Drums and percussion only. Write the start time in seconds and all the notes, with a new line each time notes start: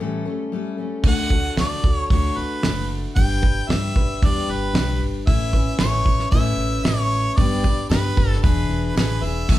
1.04 kick, crash
1.30 kick
1.57 snare, open hi-hat
1.84 kick
2.10 kick, open hi-hat
2.63 snare, open hi-hat
3.17 kick, open hi-hat
3.43 kick
3.70 snare, open hi-hat
3.96 kick
4.23 kick, open hi-hat
4.75 snare, open hi-hat
5.27 kick, open hi-hat
5.53 kick, tambourine
5.79 snare, open hi-hat, tambourine
6.06 kick, tambourine
6.19 snare
6.32 kick, open hi-hat, tambourine
6.85 snare, open hi-hat, tambourine
7.11 tambourine
7.38 kick, open hi-hat
7.64 kick, tambourine
7.89 snare, open hi-hat, tambourine
8.16 kick, tambourine
8.33 snare
8.43 kick, open hi-hat, tambourine
8.70 tambourine
8.96 snare, open hi-hat, tambourine
9.23 tambourine
9.48 kick, crash, tambourine